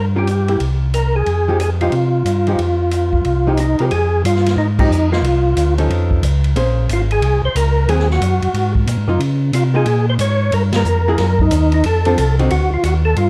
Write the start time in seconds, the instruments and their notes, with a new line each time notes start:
Already playing: tonewheel organ G2
0.16 hollow-body jazz guitar G3 C#4 F4 A#4, tonewheel organ G4
0.27 hi-hat pedal, ride
0.48 hollow-body jazz guitar A#3 E4 G4, ride
0.60 tonewheel organ C2, ride
0.94 tonewheel organ A#4, hi-hat pedal, ride
1.16 tonewheel organ G#4
1.26 tonewheel organ F2, ride
1.48 hollow-body jazz guitar F3 G#3 D#4 G4
1.60 tonewheel organ G#4, hi-hat pedal, ride
1.81 hollow-body jazz guitar F3 G#3 D#4 G4, tonewheel organ F4, ride
1.92 tonewheel organ C3, ride
2.25 tonewheel organ G2, hi-hat pedal, ride
2.47 hollow-body jazz guitar F3 G#3 D#4 G4, ride
2.59 tonewheel organ F2, ride
2.91 hi-hat pedal, ride
3.13 kick
3.25 tonewheel organ C2, ride
3.47 hollow-body jazz guitar F3 G#3 D#4 G4, tonewheel organ D#4
3.57 tonewheel organ D#4, hi-hat pedal, ride
3.79 tonewheel organ C3 A#4, hollow-body jazz guitar F3 G#3 D#4 G4, ride
3.91 tonewheel organ F2 G#4, ride
4.24 tonewheel organ G2 F4, hi-hat pedal, ride
4.36 snare
4.46 snare, ride
4.56 tonewheel organ G#2 D#4
4.79 hollow-body jazz guitar F3 G#3 D#4 G4, tonewheel organ D#4, kick, crash
4.90 tonewheel organ F2, hi-hat pedal
5.12 hollow-body jazz guitar A#3 D#4 F4, tonewheel organ F4, snare
5.22 tonewheel organ C2, ride
5.57 tonewheel organ D2, hi-hat pedal, ride
5.78 hollow-body jazz guitar F3 C#4 D#4 A4, ride
5.90 tonewheel organ F2, ride
6.11 kick
6.23 tonewheel organ C#2, hi-hat pedal, ride
6.44 ride
6.55 tonewheel organ A#1, hollow-body jazz guitar A#3 C#4 G#4 C5, ride
6.89 tonewheel organ G#1, hi-hat pedal, ride
6.93 tonewheel organ F4
7.11 tonewheel organ G#4, ride
7.22 tonewheel organ C2, ride
7.43 tonewheel organ C2 C5
7.55 tonewheel organ C#2 A#4, hi-hat pedal, ride
7.87 tonewheel organ D#2 G#4, hollow-body jazz guitar F#3 A#3 C4, ride
8.00 snare
8.10 tonewheel organ F#4, snare
8.21 tonewheel organ F#2, hi-hat pedal, ride
8.42 tonewheel organ F#2, ride
8.54 tonewheel organ G#2, ride
8.75 kick
8.86 tonewheel organ A#2, hi-hat pedal, ride
8.97 tonewheel organ G#2
9.07 tonewheel organ F#2, hollow-body jazz guitar A#3 D#4 F4
9.19 tonewheel organ C#3, ride
9.53 tonewheel organ C3 F4, hi-hat pedal, ride
9.74 hollow-body jazz guitar A#3 D#4 F4, tonewheel organ G#4
9.86 tonewheel organ A#2, ride
10.10 tonewheel organ C5
10.19 tonewheel organ G#2 C#5, hi-hat pedal, ride
10.52 tonewheel organ G2 A#4, ride
10.72 tonewheel organ A#4, snare, ride
10.85 tonewheel organ F2, hi-hat pedal
11.08 hollow-body jazz guitar F#3 A#3 E4 G#4
11.18 tonewheel organ F#2, snare, ride
11.39 tonewheel organ D#4, kick
11.51 tonewheel organ D#2, hi-hat pedal, ride
11.72 tonewheel organ D#4, ride
11.84 tonewheel organ F2 A4, ride
12.05 hollow-body jazz guitar F3 C4 D4 A4, ride
12.18 tonewheel organ C2, hi-hat pedal, ride
12.39 hollow-body jazz guitar D3 C4 D#4 F#4, ride
12.50 tonewheel organ D2 F#4, ride
12.71 tonewheel organ D2 F4
12.83 tonewheel organ D#2 F#4, hi-hat pedal, ride
13.05 tonewheel organ A4
13.16 tonewheel organ G2 F4, ride